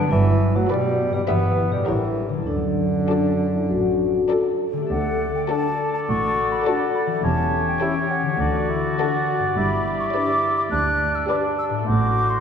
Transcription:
Already playing: G2 D3
0.00 F#3 D4
0.07 E4 B4
0.12 G1 G2 E3
0.56 A2 F#3 F#4
0.69 B2 G3 F#4 G4 B4 D5
1.10 G2 G4
1.14 B2 G3
1.19 E4
1.23 B4
1.28 G1 E3 B3 G4 B4 E5
1.69 A2 B2 G3 G4
1.74 G3
1.78 C#4
1.83 A#4
1.87 A1 G2 E3 E4 G4 A#4 C#5
2.29 D3
2.34 F#3
2.38 D4
2.42 A4
2.47 D2 F#2 D3 D4
3.08 D4 F#4 A4 D5
3.54 E4
3.69 A1 F#4
4.15 F#4
4.30 F#4 A4 D5
4.73 D3 G4
4.77 A3
4.82 D4
4.86 D2 A4
4.91 D2 A4 D5 F#5
5.35 G5
5.49 D4 F#4 A4 D5 A5
5.94 A5
6.08 A1 A2 F#4 C#6
6.52 B5
6.66 D4 F#4 A4 D5 A5
6.95 B5
7.06 E3
7.11 C#4
7.16 G4
7.20 E1 A4 C#5
7.24 E2 C#4 G4 A5
7.67 G5
7.81 C#4 E4 G4 A4 C#5
8.10 C#4 F#5
8.23 D3
8.27 D4
8.32 F#4
8.36 A4
8.40 D2 D4 F#4 D5
8.70 E4
8.98 D4 F#4 A4 D5
9.39 G2
9.43 D4
9.48 G4
9.52 B4
9.57 G1 G2 E4 G4 B5
10.00 C#6
10.14 D4 G4 B4 D5 D6
10.58 D6
10.71 D2 D4 F#6
11.15 E6
11.29 D4 G4 B4 D5 D6
11.59 E6
11.70 A2
11.74 D4
11.79 F#4
11.83 F#4 C5 D6
11.87 A1 A2 F#4
12.30 C6

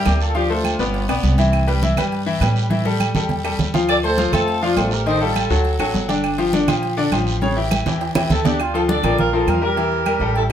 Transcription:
Already playing: E4 G4
0.06 D2 A#3 A#4 D5, high conga, low timbale, low agogo, short guiro, claves
0.20 F4 A4, high conga, short guiro
0.35 F3 D4 F4 G4 F5, high conga, low agogo, long guiro
0.50 A3 D4 F4 A4 C5, high conga
0.64 high conga, low agogo, short guiro, claves
0.79 G1 B3 B4 D5, high conga, short guiro
0.94 high conga, low agogo, long guiro
1.09 B1 B3 B4 D5, high conga, low agogo, claves
1.23 C2, high conga, low timbale, short guiro
1.38 E3 E4 E5, high conga, low agogo, short guiro
1.53 low agogo, long guiro, claves
1.67 G3 G4 B4, high conga, low agogo
1.83 E3 E4 E5, high conga, short guiro
1.97 G2 G3 G4 B4, high conga, low conga, low agogo, short guiro, claves
2.12 high conga, low agogo, long guiro
2.26 E3 E4 E5, high conga
2.41 A2 G3 G4 B4, high conga, low timbale, low agogo, short guiro, claves
2.56 high conga, short guiro
2.70 E3 E4 E5, high conga, low agogo, long guiro
2.85 G3 G4 A4, high conga
3.00 high conga, low agogo, short guiro, claves
3.15 E2 G3 G4 A4, low conga, short guiro
3.29 low conga, low agogo, long guiro
3.44 G3 G4 A4, low agogo, claves
3.59 D2, low conga, short guiro
3.74 F3 F4 F5, low conga, low agogo, short guiro
3.89 A4 D5, high conga, low agogo, long guiro, claves
4.03 A3 A4 C5, high conga, low agogo
4.18 F3 F4 F5, high conga, short guiro
4.32 F2 A3 F4 A4 C5, high conga, low conga, low agogo, short guiro, claves
4.47 high conga, low agogo, long guiro
4.62 F3 D4 F4 F5, high conga
4.77 A1 A3 A4 C5, high conga, low timbale, low agogo, short guiro, claves
4.91 G4 A#4, high conga, short guiro
5.06 D#3 D#4 A4 C5 D#5, high conga, low agogo, long guiro
5.21 G3 F4 G4 A4, high conga
5.36 high conga, low agogo, short guiro, claves
5.50 D2 F#3 F#4 A4, high conga, short guiro
5.65 high conga, low agogo, long guiro
5.79 A1 F#3 F#4 A4, high conga, low agogo, claves
5.94 G1, high conga, low timbale, short guiro
6.08 D3 D4 D5, high conga, low agogo, short guiro
6.24 high conga, low agogo, long guiro, claves
6.38 F3 F4 G4, high conga, low agogo
6.53 D3 D4 D5, high conga, short guiro
6.67 A#1 F3 F4 G4, high conga, low conga, low agogo, short guiro, claves
6.83 high conga, low agogo, long guiro
6.97 D3 D4 D5, high conga
7.12 A1 F3 F4 G4, high conga, low agogo, short guiro, claves
7.27 high conga, short guiro
7.41 C#3 C#4 C#5, high conga, low agogo, long guiro
7.56 E3 E4 G4
7.71 high conga, low agogo, short guiro, claves
7.86 E2 E3 E4 G4, low conga, high timbale, short guiro
8.01 high timbale, low agogo, long guiro
8.15 E2 E3 E4 G4, low conga, high timbale, low agogo, claves
8.30 D2 E4 A4, low conga, short guiro
8.45 D3 D4 E4 G4 D5, low conga, low timbale, low agogo, short guiro
8.60 D4 F4, high conga, low agogo, claves
8.74 F3 F4 A4, high conga, low agogo
8.88 D3 D4 A4 D5, high conga
9.03 A#1 F3 F4 A#4, high conga, low conga, low agogo, claves
9.18 F4 A#4, high conga, low conga, low agogo
9.33 F3 F4 A4 A#4, high conga
9.47 E2 F4 A#4, high conga, low timbale, low agogo, claves
9.62 G3 G4 A#4, high conga
9.76 E3 E4 E5, high conga, low agogo
9.92 high conga
10.06 G3 G4 A#4, high conga, low agogo, claves
10.20 A1 G3 G4 A4, high conga
10.36 E4 A4, high conga, low agogo

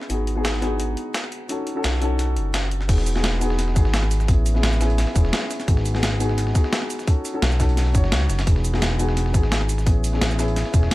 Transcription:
Already playing: B3 C#4 E4 G#4
0.01 snare
0.09 G#1 B3 D#4 F#4 G#4, closed hi-hat
0.27 closed hi-hat
0.35 B3 D#4 F#4 G#4
0.45 snare, closed hi-hat
0.54 snare
0.61 B3 D#4 F#4 G#4, snare, closed hi-hat
0.80 closed hi-hat
0.97 closed hi-hat
1.14 snare, closed hi-hat
1.24 snare
1.32 closed hi-hat
1.48 C#4 D#4 F#4 A4, closed hi-hat
1.67 closed hi-hat
1.75 C#4 D#4 F#4 A4
1.84 B1, snare, closed hi-hat
1.93 snare
2.01 C#4 D#4 F#4 A4, closed hi-hat
2.19 snare, closed hi-hat
2.37 F#1, closed hi-hat
2.54 snare, closed hi-hat
2.71 closed hi-hat
2.81 snare
2.88 E1 B3 D#4 F#4 G#4, kick, closed hi-hat, crash
2.98 snare
3.06 closed hi-hat, shaker
3.14 B3 D#4 F#4 G#4, snare
3.24 snare, closed hi-hat
3.40 B3 D#4 F#4 G#4, closed hi-hat, shaker
3.50 snare
3.59 snare, closed hi-hat
3.68 snare
3.74 G#1 B3 D#4 F#4 G#4, kick, closed hi-hat, shaker
3.85 snare
3.94 snare, closed hi-hat
4.03 snare
4.11 closed hi-hat, shaker
4.20 snare, shaker
4.27 A1 B3 C#4 E4 G#4, kick, closed hi-hat
4.46 closed hi-hat, shaker
4.54 B3 C#4 E4 G#4, snare
4.63 A1, snare, closed hi-hat
4.73 shaker
4.80 B3 C#4 E4 G#4, snare, closed hi-hat, shaker
4.90 closed hi-hat
4.98 snare, closed hi-hat, open hi-hat
5.07 snare
5.14 E1 B3 C#4 E4 G#4, kick, closed hi-hat, shaker
5.25 snare
5.33 snare, closed hi-hat
5.42 snare
5.51 snare, closed hi-hat, shaker
5.60 snare, closed hi-hat, shaker
5.67 G#1 B3 D#4 F#4 G#4, kick, closed hi-hat
5.77 snare
5.85 closed hi-hat, shaker
5.94 B3 D#4 F#4 G#4, snare
6.03 snare, closed hi-hat
6.19 B3 D#4 F#4 G#4, closed hi-hat, shaker
6.29 snare
6.38 snare, closed hi-hat
6.47 snare
6.53 B3 D#4 F#4 G#4, kick, closed hi-hat, shaker
6.64 snare
6.73 snare, closed hi-hat
6.82 snare
6.90 closed hi-hat, shaker
6.99 snare, shaker
7.07 C#4 D#4 F#4 A4, kick, closed hi-hat
7.25 closed hi-hat, shaker
7.33 C#4 D#4 F#4 A4
7.42 B1, snare, closed hi-hat
7.52 shaker
7.59 C#4 D#4 F#4 A4, kick, snare, closed hi-hat, shaker
7.69 closed hi-hat
7.77 snare, closed hi-hat, open hi-hat
7.86 snare
7.93 F#1 C#4 D#4 F#4 C#5, kick, closed hi-hat, shaker
8.04 snare
8.12 C#2, snare, closed hi-hat
8.30 F#1, snare, closed hi-hat, shaker
8.39 snare, closed hi-hat, shaker
8.46 E1 B3 D#4 F#4 G#4, kick, closed hi-hat
8.56 snare
8.64 closed hi-hat, shaker
8.73 B3 D#4 F#4 G#4, snare
8.82 snare, closed hi-hat
8.98 B3 D#4 F#4 G#4, closed hi-hat, shaker
9.09 snare
9.17 snare, closed hi-hat
9.26 snare
9.32 G#1 B3 D#4 F#4 G#4, kick, closed hi-hat, shaker
9.43 snare
9.52 snare, closed hi-hat
9.61 snare
9.69 closed hi-hat, shaker
9.78 snare, shaker
9.86 A1 B3 C#4 E4 G#4, kick, closed hi-hat
10.04 closed hi-hat, shaker
10.12 B3 C#4 E4 G#4, snare
10.21 A1, snare, closed hi-hat
10.31 shaker
10.38 B3 C#4 E4 G#4, snare, closed hi-hat, shaker
10.48 closed hi-hat
10.56 snare, closed hi-hat, open hi-hat
10.66 snare
10.72 E1 B3 C#4 E4 G#4, kick, closed hi-hat, shaker
10.83 snare
10.91 snare, closed hi-hat

